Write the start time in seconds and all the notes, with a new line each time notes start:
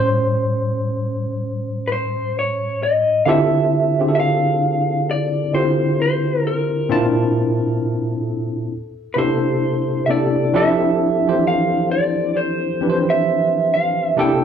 Already playing: A2 G3 C#4 C5 C#5
1.88 B4
1.92 C5
2.39 C#5
2.83 D#5
3.26 D3 C4 E4 F4 G4 A4 F5
3.30 E5
3.99 D3 C4 D4 F4 G4 G#4
4.08 A4
4.15 E5
4.20 F5
5.11 D5
5.53 D3 C4 E4 F4 G4 C5
6.02 C5
6.47 A#4
6.89 A#2 C4 D4 E4 F4 A5
8.18 A4
9.14 C3 A#3 D4 E4 G4 B4
9.18 A4 C5
10.06 C3 A#3 D4 E4 G4 E5
10.10 A4 D5
10.54 F3 C4 D4 E4 G4 A4 E5
11.27 E3 F3 C4 D4 G4 C5
11.47 F5
11.91 D5
12.37 C5
12.81 E3 F3 C4 D4 G4 B4
12.90 C5
13.10 E5
13.74 F5
14.05 E5
14.17 C3 A#3 D4 E4 G4 A4 G5